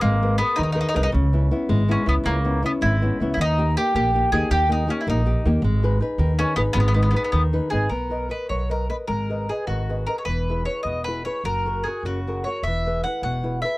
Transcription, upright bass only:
X:1
M:6/8
L:1/8
Q:3/8=105
K:G#m
V:1 name="Upright bass" clef=bass
G,,,3 D,,2 ^B,,, | C,,3 G,,,2 C,, | C,,3 G,,,2 C,, | D,,3 A,,,2 D,, |
D,,3 A,,,2 D,, | G,,,3 D,,2 G,,, | G,,,3 D,,2 G,,, | [K:B] B,,,3 B,,,3 |
G,,,3 G,,,3 | E,,,3 E,,,3 | F,,,3 F,,,3 | E,,,3 E,,,3 |]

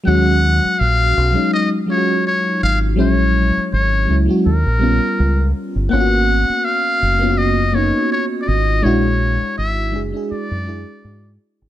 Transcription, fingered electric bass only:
X:1
M:4/4
L:1/16
Q:"Swing 16ths" 1/4=82
K:Ebm
V:1 name="Fingered electric bass" clef=bass
E,,3 z B,,,2 C,, z6 z A,,,2 | B,,,3 z A,,,2 D,, z E,, B,,,2 z D,,2 z =G,,, | A,,,3 z3 G,,,4- G,,, z3 A,,,2 | B,,,3 z A,,,2 ^F,,, z2 ^F,,2 z A,,2 z A,,, |]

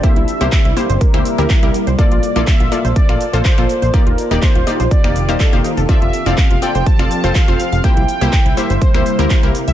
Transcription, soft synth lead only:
X:1
M:4/4
L:1/16
Q:1/4=123
K:Cmix
V:1 name="Soft synth lead"
e6 c2 B6 z2 | d4 e4 d4 c4 | B4 c4 d6 z2 | e3 f3 g2 a4 f4 |
g6 e2 c6 z2 |]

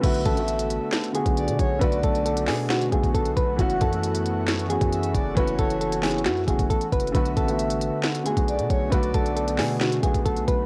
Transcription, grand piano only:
X:1
M:4/4
L:1/16
Q:1/4=135
K:Bdor
V:1 name="Grand piano"
[D,A,B,F]2 z [D,A,B,F]4- [D,A,B,F] z2 [D,A,B,F]4 z2 | [D,A,B,F]4 z2 [D,A,B,G]3 z [D,A,B,F]4 z2 | [E,A,CF]2 z [E,A,CE]4- [E,A,CE] z2 [E,A,CF]4 z2 | [E,A,CF]4 z2 [E,A,CE]3 z [E,A,CF]4 z2 |
[D,A,B,F]2 z [D,A,B,F]4- [D,A,B,F] z2 [D,A,B,F]4 z2 | [D,A,B,F]4 z2 [D,A,B,G]3 z [D,A,B,F]4 z2 |]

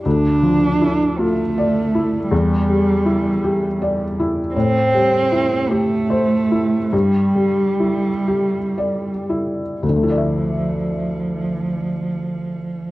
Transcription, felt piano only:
X:1
M:6/8
L:1/8
Q:3/8=51
K:Dm
V:1 name="Felt piano"
D,, F, E F d E | E,, G, E G d E | A,, G, E G c E | G,, G, E G d E |
[D,,D,A,Ede]6 |]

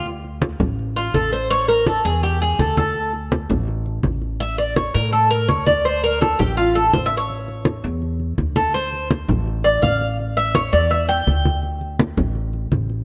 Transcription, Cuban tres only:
X:1
M:4/4
L:1/8
Q:1/4=166
K:Dm
V:1 name="Cuban tres"
z4 z F A c | ^c B A ^G =G ^G A A- | A z6 z | e d ^c B A B c d |
c B A G F A (3c e ^c- | ^c4 z3 A | c2 z3 d f2 | z e ^c d e g3 |
z8 |]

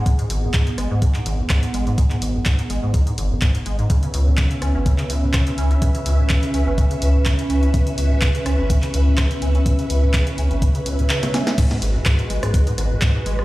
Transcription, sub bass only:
X:1
M:4/4
L:1/16
Q:"Swing 16ths" 1/4=125
K:G#m
V:1 name="Sub bass" clef=bass
z2 G,,, z3 G,,, G,, z2 G,,, z3 G,,, z | z2 G,,, z3 G,,, G,, z2 F,,, z3 G,,, z | z2 C,, z3 C,, G,,, z2 C,, z3 C,, z | z2 C,, z3 C,, G,,, z2 C,, z3 C,, z |
z2 C,, z3 C,, G,,, z2 C,, z3 C,, z | z2 C,, z3 C,, G,,, z2 C,, z4 z | z2 G,,, z3 G,,, G,, z2 G,,, z3 G,,, z |]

